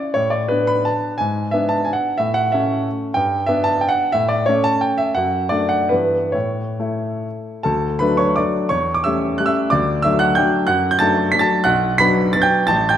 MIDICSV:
0, 0, Header, 1, 2, 480
1, 0, Start_track
1, 0, Key_signature, 3, "major"
1, 0, Tempo, 353149
1, 219, Time_signature, 3, 2, 24, 8
1, 1190, Tempo, 331858
1, 3590, Tempo, 317628
1, 4532, Key_signature, 2, "major"
1, 5030, Tempo, 336511
1, 7430, Tempo, 372439
1, 8390, Tempo, 445765
1, 9830, Tempo, 405954
1, 10310, Tempo, 347625
1, 12710, Tempo, 323974
1, 16070, Tempo, 341297
1, 17913, End_track
2, 0, Start_track
2, 0, Title_t, "Grand piano"
2, 0, Program_c, 0, 0
2, 0, Note_on_c, 0, 61, 41
2, 0, Note_on_c, 0, 64, 46
2, 0, Note_on_c, 0, 74, 71
2, 163, Note_off_c, 0, 61, 0
2, 165, Note_off_c, 0, 64, 0
2, 189, Note_on_c, 0, 73, 83
2, 203, Note_off_c, 0, 74, 0
2, 218, Note_on_c, 0, 45, 50
2, 412, Note_on_c, 0, 74, 74
2, 436, Note_off_c, 0, 73, 0
2, 514, Control_c, 0, 64, 127
2, 659, Note_on_c, 0, 71, 75
2, 680, Note_off_c, 0, 74, 0
2, 685, Note_off_c, 0, 45, 0
2, 694, Note_on_c, 0, 59, 44
2, 697, Note_on_c, 0, 62, 49
2, 915, Note_on_c, 0, 83, 80
2, 933, Note_off_c, 0, 71, 0
2, 1156, Note_on_c, 0, 81, 74
2, 1171, Note_off_c, 0, 83, 0
2, 1202, Control_c, 0, 64, 0
2, 1597, Note_off_c, 0, 59, 0
2, 1598, Note_off_c, 0, 62, 0
2, 1626, Note_on_c, 0, 80, 85
2, 1639, Note_off_c, 0, 81, 0
2, 1665, Note_on_c, 0, 44, 50
2, 1969, Control_c, 0, 64, 127
2, 2113, Note_on_c, 0, 76, 87
2, 2132, Note_off_c, 0, 80, 0
2, 2137, Note_off_c, 0, 44, 0
2, 2145, Note_on_c, 0, 59, 47
2, 2153, Note_on_c, 0, 62, 52
2, 2364, Note_on_c, 0, 81, 82
2, 2380, Note_off_c, 0, 76, 0
2, 2594, Note_on_c, 0, 80, 71
2, 2620, Note_off_c, 0, 81, 0
2, 2649, Control_c, 0, 64, 0
2, 2716, Note_on_c, 0, 78, 77
2, 2733, Note_off_c, 0, 80, 0
2, 3047, Note_off_c, 0, 59, 0
2, 3051, Note_off_c, 0, 62, 0
2, 3070, Note_on_c, 0, 76, 90
2, 3087, Note_off_c, 0, 78, 0
2, 3098, Note_on_c, 0, 45, 55
2, 3310, Note_on_c, 0, 78, 84
2, 3327, Note_off_c, 0, 76, 0
2, 3337, Control_c, 0, 64, 127
2, 3567, Note_on_c, 0, 76, 78
2, 3572, Note_off_c, 0, 45, 0
2, 3573, Note_off_c, 0, 78, 0
2, 3597, Note_on_c, 0, 57, 47
2, 3602, Note_on_c, 0, 61, 54
2, 3830, Note_off_c, 0, 76, 0
2, 4099, Control_c, 0, 64, 0
2, 4474, Note_off_c, 0, 57, 0
2, 4476, Note_off_c, 0, 61, 0
2, 4507, Note_on_c, 0, 79, 92
2, 4538, Note_on_c, 0, 43, 56
2, 4826, Control_c, 0, 64, 127
2, 4995, Note_on_c, 0, 76, 93
2, 5018, Note_off_c, 0, 43, 0
2, 5018, Note_off_c, 0, 79, 0
2, 5027, Note_on_c, 0, 59, 54
2, 5031, Note_on_c, 0, 62, 56
2, 5244, Note_on_c, 0, 81, 94
2, 5266, Note_off_c, 0, 76, 0
2, 5491, Note_on_c, 0, 79, 74
2, 5506, Note_off_c, 0, 81, 0
2, 5539, Control_c, 0, 64, 0
2, 5598, Note_on_c, 0, 78, 88
2, 5624, Note_off_c, 0, 79, 0
2, 5923, Note_off_c, 0, 59, 0
2, 5924, Note_off_c, 0, 62, 0
2, 5937, Note_on_c, 0, 76, 100
2, 5959, Note_off_c, 0, 78, 0
2, 5966, Note_on_c, 0, 45, 57
2, 6168, Note_on_c, 0, 74, 85
2, 6191, Note_off_c, 0, 76, 0
2, 6215, Control_c, 0, 64, 127
2, 6416, Note_on_c, 0, 73, 87
2, 6438, Note_off_c, 0, 45, 0
2, 6438, Note_off_c, 0, 74, 0
2, 6454, Note_on_c, 0, 57, 50
2, 6460, Note_on_c, 0, 61, 56
2, 6478, Control_c, 0, 64, 0
2, 6671, Note_on_c, 0, 81, 94
2, 6690, Note_off_c, 0, 73, 0
2, 6917, Note_on_c, 0, 79, 80
2, 6936, Note_off_c, 0, 81, 0
2, 7153, Note_on_c, 0, 76, 88
2, 7176, Note_off_c, 0, 79, 0
2, 7371, Note_off_c, 0, 57, 0
2, 7374, Note_off_c, 0, 61, 0
2, 7395, Note_on_c, 0, 78, 84
2, 7409, Note_off_c, 0, 76, 0
2, 7420, Note_on_c, 0, 42, 54
2, 7673, Control_c, 0, 64, 127
2, 7845, Note_on_c, 0, 74, 83
2, 7865, Note_off_c, 0, 42, 0
2, 7867, Note_off_c, 0, 78, 0
2, 7877, Note_on_c, 0, 57, 49
2, 7879, Note_on_c, 0, 62, 50
2, 8097, Note_on_c, 0, 78, 78
2, 8113, Note_off_c, 0, 74, 0
2, 8337, Note_off_c, 0, 57, 0
2, 8338, Note_off_c, 0, 62, 0
2, 8358, Note_on_c, 0, 71, 63
2, 8373, Note_off_c, 0, 78, 0
2, 8386, Note_on_c, 0, 52, 33
2, 8387, Note_on_c, 0, 43, 50
2, 8390, Note_on_c, 0, 59, 37
2, 8399, Note_on_c, 0, 64, 32
2, 8401, Control_c, 0, 64, 0
2, 8616, Control_c, 0, 64, 127
2, 8807, Note_off_c, 0, 52, 0
2, 8808, Note_off_c, 0, 59, 0
2, 8813, Note_off_c, 0, 64, 0
2, 8828, Note_on_c, 0, 73, 65
2, 8836, Note_off_c, 0, 43, 0
2, 8838, Note_off_c, 0, 71, 0
2, 8852, Note_on_c, 0, 45, 50
2, 8871, Control_c, 0, 64, 0
2, 9113, Control_c, 0, 64, 127
2, 9327, Note_off_c, 0, 45, 0
2, 9338, Note_on_c, 0, 57, 44
2, 9346, Note_on_c, 0, 64, 45
2, 9818, Note_off_c, 0, 73, 0
2, 9844, Control_c, 0, 64, 0
2, 10262, Note_off_c, 0, 57, 0
2, 10266, Note_off_c, 0, 64, 0
2, 10281, Note_on_c, 0, 81, 76
2, 10293, Note_on_c, 0, 69, 61
2, 10304, Note_on_c, 0, 38, 54
2, 10567, Control_c, 0, 64, 127
2, 10754, Note_off_c, 0, 69, 0
2, 10768, Note_on_c, 0, 83, 87
2, 10781, Note_off_c, 0, 38, 0
2, 10782, Note_off_c, 0, 81, 0
2, 10789, Note_on_c, 0, 71, 62
2, 10800, Note_on_c, 0, 54, 42
2, 10806, Note_on_c, 0, 62, 47
2, 10808, Note_on_c, 0, 57, 42
2, 11021, Note_on_c, 0, 85, 83
2, 11028, Note_off_c, 0, 71, 0
2, 11036, Note_off_c, 0, 83, 0
2, 11036, Note_on_c, 0, 73, 61
2, 11245, Note_off_c, 0, 54, 0
2, 11248, Note_off_c, 0, 62, 0
2, 11249, Note_off_c, 0, 57, 0
2, 11269, Note_off_c, 0, 73, 0
2, 11274, Note_on_c, 0, 86, 75
2, 11279, Note_off_c, 0, 85, 0
2, 11289, Note_on_c, 0, 74, 61
2, 11304, Note_on_c, 0, 54, 38
2, 11305, Note_on_c, 0, 57, 39
2, 11308, Note_on_c, 0, 62, 42
2, 11313, Control_c, 0, 64, 0
2, 11721, Note_off_c, 0, 54, 0
2, 11721, Note_off_c, 0, 57, 0
2, 11723, Note_off_c, 0, 62, 0
2, 11727, Note_off_c, 0, 74, 0
2, 11737, Note_on_c, 0, 85, 89
2, 11751, Note_on_c, 0, 73, 64
2, 11752, Note_off_c, 0, 86, 0
2, 11762, Note_on_c, 0, 40, 53
2, 12012, Control_c, 0, 64, 127
2, 12086, Note_on_c, 0, 86, 84
2, 12089, Note_off_c, 0, 73, 0
2, 12107, Note_off_c, 0, 85, 0
2, 12214, Note_on_c, 0, 88, 93
2, 12224, Note_off_c, 0, 86, 0
2, 12227, Note_off_c, 0, 40, 0
2, 12230, Note_on_c, 0, 76, 70
2, 12242, Note_on_c, 0, 55, 43
2, 12247, Note_on_c, 0, 57, 44
2, 12252, Note_on_c, 0, 61, 50
2, 12664, Note_off_c, 0, 55, 0
2, 12667, Note_off_c, 0, 57, 0
2, 12670, Note_off_c, 0, 61, 0
2, 12672, Note_off_c, 0, 76, 0
2, 12687, Note_on_c, 0, 90, 86
2, 12698, Note_off_c, 0, 88, 0
2, 12711, Note_on_c, 0, 55, 42
2, 12714, Note_on_c, 0, 57, 41
2, 12723, Control_c, 0, 64, 0
2, 12728, Note_on_c, 0, 61, 42
2, 12800, Note_on_c, 0, 88, 92
2, 12815, Note_on_c, 0, 76, 67
2, 12821, Note_off_c, 0, 90, 0
2, 13144, Note_off_c, 0, 55, 0
2, 13146, Note_off_c, 0, 57, 0
2, 13153, Note_off_c, 0, 61, 0
2, 13157, Note_off_c, 0, 76, 0
2, 13161, Note_on_c, 0, 86, 96
2, 13175, Note_off_c, 0, 88, 0
2, 13178, Note_on_c, 0, 74, 74
2, 13195, Note_on_c, 0, 38, 65
2, 13502, Control_c, 0, 64, 127
2, 13633, Note_off_c, 0, 74, 0
2, 13640, Note_on_c, 0, 88, 100
2, 13658, Note_off_c, 0, 86, 0
2, 13661, Note_off_c, 0, 38, 0
2, 13663, Note_on_c, 0, 76, 78
2, 13674, Note_on_c, 0, 54, 50
2, 13677, Note_on_c, 0, 57, 47
2, 13687, Note_on_c, 0, 62, 55
2, 13886, Note_on_c, 0, 90, 101
2, 13899, Note_on_c, 0, 78, 77
2, 13901, Note_off_c, 0, 76, 0
2, 13907, Note_off_c, 0, 88, 0
2, 14118, Note_off_c, 0, 54, 0
2, 14119, Note_off_c, 0, 57, 0
2, 14125, Note_off_c, 0, 62, 0
2, 14125, Note_on_c, 0, 91, 97
2, 14136, Note_off_c, 0, 78, 0
2, 14148, Note_off_c, 0, 90, 0
2, 14148, Note_on_c, 0, 79, 67
2, 14163, Note_on_c, 0, 54, 46
2, 14164, Note_on_c, 0, 57, 46
2, 14174, Note_on_c, 0, 62, 51
2, 14177, Control_c, 0, 64, 0
2, 14583, Note_off_c, 0, 54, 0
2, 14583, Note_off_c, 0, 57, 0
2, 14589, Note_off_c, 0, 62, 0
2, 14589, Note_off_c, 0, 79, 0
2, 14591, Note_on_c, 0, 90, 105
2, 14606, Note_on_c, 0, 78, 79
2, 14610, Note_off_c, 0, 91, 0
2, 14618, Note_on_c, 0, 42, 65
2, 14896, Control_c, 0, 64, 127
2, 14947, Note_off_c, 0, 78, 0
2, 14952, Note_on_c, 0, 91, 101
2, 14965, Note_off_c, 0, 90, 0
2, 15067, Note_on_c, 0, 93, 116
2, 15084, Note_on_c, 0, 81, 84
2, 15087, Note_off_c, 0, 42, 0
2, 15091, Note_off_c, 0, 91, 0
2, 15097, Note_on_c, 0, 54, 52
2, 15105, Note_on_c, 0, 57, 53
2, 15114, Note_on_c, 0, 62, 57
2, 15536, Note_off_c, 0, 54, 0
2, 15540, Note_off_c, 0, 57, 0
2, 15543, Note_off_c, 0, 81, 0
2, 15545, Note_off_c, 0, 62, 0
2, 15554, Note_on_c, 0, 95, 104
2, 15569, Note_off_c, 0, 93, 0
2, 15586, Note_on_c, 0, 54, 51
2, 15593, Note_on_c, 0, 57, 48
2, 15603, Note_on_c, 0, 62, 55
2, 15604, Control_c, 0, 64, 0
2, 15668, Note_on_c, 0, 93, 107
2, 15689, Note_on_c, 0, 81, 83
2, 15692, Note_off_c, 0, 95, 0
2, 16021, Note_off_c, 0, 54, 0
2, 16024, Note_off_c, 0, 57, 0
2, 16030, Note_off_c, 0, 62, 0
2, 16030, Note_on_c, 0, 90, 111
2, 16035, Note_off_c, 0, 81, 0
2, 16044, Note_on_c, 0, 78, 81
2, 16050, Note_off_c, 0, 93, 0
2, 16065, Note_on_c, 0, 35, 72
2, 16357, Control_c, 0, 64, 127
2, 16508, Note_off_c, 0, 78, 0
2, 16517, Note_on_c, 0, 95, 118
2, 16533, Note_on_c, 0, 83, 92
2, 16536, Note_off_c, 0, 90, 0
2, 16538, Note_off_c, 0, 35, 0
2, 16545, Note_on_c, 0, 54, 54
2, 16546, Note_on_c, 0, 59, 54
2, 16556, Note_on_c, 0, 62, 63
2, 16991, Note_off_c, 0, 54, 0
2, 16992, Note_off_c, 0, 59, 0
2, 16997, Note_off_c, 0, 62, 0
2, 17000, Note_off_c, 0, 83, 0
2, 17005, Note_on_c, 0, 93, 109
2, 17027, Note_off_c, 0, 95, 0
2, 17035, Note_on_c, 0, 54, 49
2, 17041, Note_on_c, 0, 59, 51
2, 17049, Note_on_c, 0, 62, 54
2, 17063, Control_c, 0, 64, 0
2, 17127, Note_on_c, 0, 91, 105
2, 17143, Note_off_c, 0, 93, 0
2, 17145, Note_on_c, 0, 79, 87
2, 17464, Note_off_c, 0, 54, 0
2, 17467, Note_off_c, 0, 59, 0
2, 17471, Note_off_c, 0, 62, 0
2, 17481, Note_on_c, 0, 93, 113
2, 17482, Note_off_c, 0, 79, 0
2, 17497, Note_on_c, 0, 81, 93
2, 17499, Note_off_c, 0, 91, 0
2, 17506, Note_on_c, 0, 33, 67
2, 17791, Control_c, 0, 64, 127
2, 17793, Note_on_c, 0, 91, 102
2, 17797, Note_off_c, 0, 81, 0
2, 17811, Note_off_c, 0, 93, 0
2, 17811, Note_on_c, 0, 79, 79
2, 17913, Note_off_c, 0, 33, 0
2, 17913, Note_off_c, 0, 79, 0
2, 17913, Note_off_c, 0, 91, 0
2, 17913, End_track
0, 0, End_of_file